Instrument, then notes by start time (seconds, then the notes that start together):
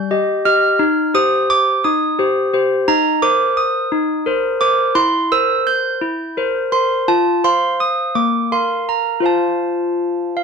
handbells
Already playing: G3 G6
0.11 G4 D#5
0.45 G4 D#5 F6
0.79 D#4
1.14 G4 C5 D#6
1.50 D6
1.84 D#4 D#6
2.19 G4 C5
2.54 G4 C5
2.88 D#4 A#5
3.22 A#4 C5 D6
3.57 D#6
3.92 D#4
4.26 A#4 C5
4.61 A#4 C5 D6
4.95 E4 C6
5.32 A#4 C5 E6
5.67 G6
6.01 E4
6.37 A#4 C5
6.72 A#4 C5 C6
7.08 F4 A5
7.44 C5 F5 C6
7.80 D#6
8.15 A#3 D6
8.52 A#4 F5 C6
8.89 A#5
9.20 F4 C5 F5
9.26 A5
10.37 F5